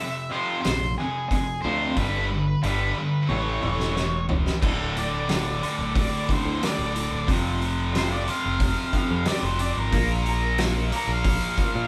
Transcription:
0.00 0.28 F2 medium
0.00 0.28 C3 medium
0.00 0.34 E5 loud
0.30 0.62 F2 medium
0.30 0.62 C3 medium
0.30 0.62 F3 medium
0.30 0.60 C5 medium
0.62 0.94 F2 medium
0.62 0.95 C3 medium
0.62 0.94 C5 medium
0.62 snare loud
0.62 open hi-hat medium
0.66 0.94 A#1 medium
0.98 1.28 F2 medium
0.98 1.28 C3 medium
0.98 1.28 G#4 medium
1.29 1.61 F2 medium
1.29 1.62 C3 medium
1.29 1.61 G#4 medium
1.29 kick medium
1.29 open hi-hat soft
1.62 1.93 D2 medium
1.62 1.96 F2 medium
1.62 1.96 C3 medium
1.62 1.96 F3 medium
1.62 1.94 C5 medium
1.97 2.54 G1 loud
1.97 2.29 G2 medium
1.97 2.30 D3 medium
1.97 2.30 G3 medium
1.97 2.62 B4 medium
1.97 kick medium
1.97 open hi-hat soft
2.32 2.61 G2 medium
2.32 2.61 D3 medium
2.63 2.92 G1 loud
2.63 2.95 G2 medium
2.63 2.95 D3 medium
2.63 2.95 G3 loud
2.63 3.32 B4 medium
2.63 open hi-hat soft
2.98 3.28 G2 medium
2.98 3.28 D3 medium
3.29 3.58 A1 medium
3.29 3.62 A2 medium
3.29 3.62 E3 medium
3.29 3.62 A3 loud
3.29 4.25 C#5 medium
3.29 high tom medium
3.63 4.48 E1 medium
3.63 3.95 A2 medium
3.63 3.95 E3 medium
3.63 3.95 A3 medium
3.63 mid tom medium
3.80 snare medium
3.96 4.27 A2 medium
3.96 4.26 E3 medium
3.96 snare medium
4.29 4.60 A2 medium
4.29 4.60 E3 medium
4.29 floor tom medium
4.46 snare medium
4.62 5.61 D1 medium
4.62 4.95 D2 medium
4.62 4.95 A2 medium
4.62 4.95 D3 medium
4.62 kick loud
4.62 crash loud
4.97 5.26 D2 medium
4.97 5.27 A2 medium
4.97 5.94 D5 medium
4.97 open hi-hat medium
5.29 5.60 D2 medium
5.29 5.60 A2 medium
5.29 5.61 D3 loud
5.29 snare loud
5.29 open hi-hat medium
5.62 5.93 D2 medium
5.62 5.93 A2 medium
5.62 7.26 D3 medium
5.62 open hi-hat medium
5.79 6.07 D1 medium
5.96 6.26 D2 medium
5.96 6.26 A2 medium
5.96 6.30 D5 medium
5.96 kick loud
5.96 open hi-hat medium
6.29 6.60 D2 medium
6.29 6.61 A2 medium
6.29 6.61 D3 medium
6.29 kick medium
6.29 open hi-hat medium
6.33 6.63 C5 medium
6.45 6.60 D2 medium
6.62 6.92 D2 medium
6.62 6.92 A2 medium
6.62 7.28 D5 medium
6.62 snare loud
6.62 open hi-hat medium
6.79 7.07 D1 medium
6.95 7.25 D2 medium
6.95 7.25 A2 medium
6.95 open hi-hat medium
7.12 7.26 D1 medium
7.27 8.27 F1 medium
7.27 7.59 F2 medium
7.27 7.59 C3 medium
7.27 7.59 F3 medium
7.27 kick medium
7.27 open hi-hat medium
7.61 7.91 F2 medium
7.61 7.91 C3 medium
7.61 open hi-hat soft
7.93 8.25 F2 medium
7.93 8.25 C3 medium
7.93 8.25 F3 medium
7.93 8.12 C5 medium
7.93 snare loud
7.93 open hi-hat medium
8.12 8.28 D5 medium
8.26 8.57 F2 medium
8.26 8.58 C3 medium
8.26 9.91 F3 medium
8.26 9.25 F5 medium
8.26 open hi-hat medium
8.46 8.73 F1 medium
8.60 8.90 F2 medium
8.60 8.90 C3 medium
8.60 kick loud
8.60 open hi-hat medium
8.93 9.25 F2 medium
8.93 9.25 C3 medium
8.93 9.25 F3 medium
8.93 kick medium
8.93 open hi-hat medium
9.11 9.25 F2 medium
9.25 9.57 F2 medium
9.25 9.57 C3 medium
9.25 9.44 D5 medium
9.25 snare loud
9.25 open hi-hat medium
9.43 9.71 F1 medium
9.43 9.60 C5 medium
9.59 9.90 F2 medium
9.59 9.90 C3 medium
9.59 9.77 D5 medium
9.59 open hi-hat medium
9.76 9.91 G#1 medium
9.76 10.26 A#4 medium
9.92 10.91 A#1 medium
9.92 10.24 A#2 medium
9.92 10.24 F3 medium
9.92 10.25 A#3 medium
9.92 kick loud
9.92 open hi-hat medium
10.26 10.57 A#2 medium
10.26 10.57 F3 medium
10.26 10.60 A#4 medium
10.26 open hi-hat soft
10.58 10.90 A#2 medium
10.58 10.90 F3 medium
10.58 10.91 A#3 loud
10.58 snare loud
10.58 open hi-hat medium
10.92 11.22 A#2 medium
10.92 11.22 F3 medium
10.92 11.87 A#3 medium
10.92 11.10 A#4 medium
10.92 open hi-hat medium
11.08 11.36 A#1 medium
11.12 11.87 F5 medium
11.24 11.55 A#2 medium
11.24 11.55 F3 medium
11.24 kick loud
11.24 open hi-hat medium
11.57 11.87 A#2 medium
11.57 11.87 F3 medium
11.57 11.87 A#3 medium
11.57 kick medium
11.57 open hi-hat medium
11.75 11.87 A#2 medium

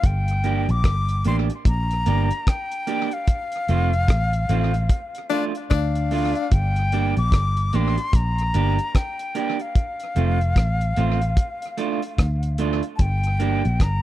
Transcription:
0.03 0.66 G1 loud
0.03 0.72 G5 loud
0.03 kick loud
0.03 closed hi-hat medium
0.28 closed hi-hat medium
0.44 0.65 A#3 medium
0.44 0.66 D4 medium
0.44 0.66 G4 medium
0.44 closed hi-hat medium
0.69 0.84 A#1 medium
0.69 1.26 D6 loud
0.69 closed hi-hat soft
0.84 1.23 G1 medium
0.84 kick loud
0.84 cross-stick loud
0.84 closed hi-hat medium
1.09 closed hi-hat medium
1.25 1.49 A1 medium
1.25 1.47 A#3 medium
1.25 1.47 D4 medium
1.25 1.47 G4 medium
1.25 1.36 C6 medium
1.25 closed hi-hat medium
1.50 muted clean electric guitar stroke soft
1.50 closed hi-hat soft
1.65 2.04 A#1 medium
1.65 2.51 A#5 loud
1.65 kick loud
1.65 closed hi-hat medium
1.91 closed hi-hat medium
2.06 2.30 G1 medium
2.06 2.27 A#3 medium
2.06 2.28 D4 medium
2.06 2.28 G4 medium
2.06 closed hi-hat medium
2.31 closed hi-hat medium
2.47 3.15 G5 medium
2.47 kick loud
2.47 cross-stick loud
2.47 closed hi-hat medium
2.72 closed hi-hat soft
2.87 3.08 A#3 medium
2.87 3.09 D4 medium
2.87 3.09 G4 medium
2.87 closed hi-hat medium
3.11 5.47 F5 loud
3.11 closed hi-hat soft
3.27 kick loud
3.27 closed hi-hat medium
3.52 closed hi-hat medium
3.68 4.07 F1 medium
3.68 3.90 A3 medium
3.68 3.90 C4 medium
3.68 3.90 F4 medium
3.68 closed hi-hat medium
3.93 closed hi-hat soft
4.08 4.47 A1 medium
4.08 kick loud
4.08 cross-stick loud
4.08 closed hi-hat medium
4.33 closed hi-hat medium
4.49 4.88 A1 medium
4.49 4.70 A3 medium
4.49 4.71 C4 medium
4.49 4.71 F4 medium
4.49 closed hi-hat medium
4.74 muted clean electric guitar stroke medium
4.74 closed hi-hat soft
4.89 kick loud
4.89 closed hi-hat medium
5.15 closed hi-hat medium
5.30 5.51 A3 medium
5.30 5.45 D4 loud
5.30 5.52 D4 medium
5.30 5.52 F4 medium
5.30 closed hi-hat medium
5.55 closed hi-hat soft
5.70 6.33 D2 medium
5.70 6.47 D4 loud
5.70 6.55 F5 medium
5.70 kick loud
5.70 cross-stick loud
5.70 closed hi-hat medium
5.95 closed hi-hat medium
6.11 6.32 A3 medium
6.11 6.33 D4 medium
6.11 6.33 F4 loud
6.11 open hi-hat medium
6.35 closed hi-hat soft
6.51 7.14 G1 loud
6.51 7.17 G5 medium
6.51 kick loud
6.51 closed hi-hat medium
6.76 closed hi-hat medium
6.92 7.14 A#3 medium
6.92 7.14 D4 medium
6.92 7.14 G4 medium
6.92 closed hi-hat medium
7.17 7.32 A#1 medium
7.17 7.77 D6 medium
7.17 closed hi-hat soft
7.32 7.71 G1 medium
7.32 kick loud
7.32 cross-stick loud
7.32 closed hi-hat medium
7.57 closed hi-hat medium
7.73 7.97 A1 medium
7.73 7.94 A#3 medium
7.73 7.95 D4 medium
7.73 7.95 G4 medium
7.73 8.17 C6 medium
7.73 closed hi-hat medium
7.98 muted clean electric guitar stroke soft
7.98 closed hi-hat soft
8.13 8.52 A#1 medium
8.13 8.97 A#5 medium
8.13 kick loud
8.13 closed hi-hat medium
8.38 closed hi-hat medium
8.54 8.78 G1 medium
8.54 8.75 A#3 medium
8.54 8.76 D4 medium
8.54 8.76 G4 medium
8.54 closed hi-hat medium
8.79 closed hi-hat medium
8.95 9.63 G5 medium
8.95 kick loud
8.95 cross-stick loud
8.95 closed hi-hat medium
9.19 closed hi-hat medium
9.35 9.56 A#3 medium
9.35 9.56 D4 medium
9.35 9.57 G4 loud
9.35 closed hi-hat medium
9.60 12.60 F5 medium
9.60 closed hi-hat soft
9.75 kick loud
9.75 closed hi-hat medium
10.00 closed hi-hat medium
10.16 10.55 F1 loud
10.16 10.37 A3 medium
10.16 10.37 C4 medium
10.16 10.38 F4 medium
10.16 closed hi-hat medium
10.41 closed hi-hat soft
10.56 10.95 A1 medium
10.56 kick loud
10.56 cross-stick loud
10.56 closed hi-hat medium
10.81 closed hi-hat soft
10.97 11.36 A1 medium
10.97 11.18 A3 medium
10.97 11.18 C4 medium
10.97 11.19 F4 medium
10.97 closed hi-hat medium
11.21 muted clean electric guitar stroke soft
11.21 closed hi-hat soft
11.37 kick loud
11.37 closed hi-hat medium
11.62 closed hi-hat medium
11.77 11.99 A3 medium
11.77 11.99 D4 medium
11.77 12.00 F4 medium
11.77 closed hi-hat medium
12.02 closed hi-hat soft
12.18 12.80 D2 medium
12.18 kick loud
12.18 cross-stick loud
12.18 closed hi-hat medium
12.43 closed hi-hat medium
12.58 12.80 A3 medium
12.58 12.80 D4 loud
12.58 12.81 F4 medium
12.58 closed hi-hat medium
12.83 closed hi-hat soft
12.96 13.61 G1 loud
12.96 13.03 A5 medium
12.96 kick loud
12.96 closed hi-hat medium
13.01 13.84 G5 loud
13.24 closed hi-hat medium
13.39 13.61 A#3 medium
13.39 13.61 D4 medium
13.39 13.62 G4 medium
13.39 closed hi-hat medium
13.65 13.80 A#1 medium
13.65 closed hi-hat soft
13.80 14.02 G1 medium
13.80 14.02 A#5 loud
13.80 kick loud
13.80 cross-stick medium
13.80 closed hi-hat medium

